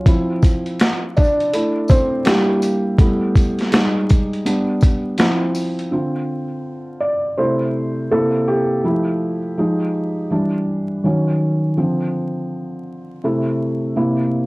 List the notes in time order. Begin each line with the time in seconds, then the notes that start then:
0.06 F3 C4 E4, kick, closed hi-hat
0.43 kick, closed hi-hat, tambourine
0.66 closed hi-hat
0.80 snare, closed hi-hat
1.17 D4 D5, kick, closed hi-hat, tambourine
1.41 closed hi-hat
1.53 A3 D4 E4, closed hi-hat
1.88 C4 C5, kick, closed hi-hat, tambourine
2.25 G3 A#3 D4 E4 G4, snare, closed hi-hat
2.62 closed hi-hat, tambourine
2.99 G3 A3 B3 E4, kick, closed hi-hat
3.36 kick, closed hi-hat, tambourine
3.59 snare, closed hi-hat
3.72 G3 G#3 D#4, snare, closed hi-hat
4.09 kick, closed hi-hat, tambourine
4.33 closed hi-hat
4.45 G3 B3 D4, closed hi-hat
4.81 kick, closed hi-hat, tambourine
5.18 F3 C4 E4, snare, closed hi-hat
5.55 open hi-hat, tambourine
5.79 closed hi-hat
5.91 D3 C4 F4
7.00 D5
7.37 C3 A3 E4 C5
8.11 C3 A#3 E4 A4
8.48 G4
8.84 F3 A3 E4
9.57 F3 G#3 D#4
10.31 E3 G3 D4
11.04 D#3 F#3 C#4
11.77 D3 F3 C4
13.24 C3 A3 E4
13.96 C3 A#3 E4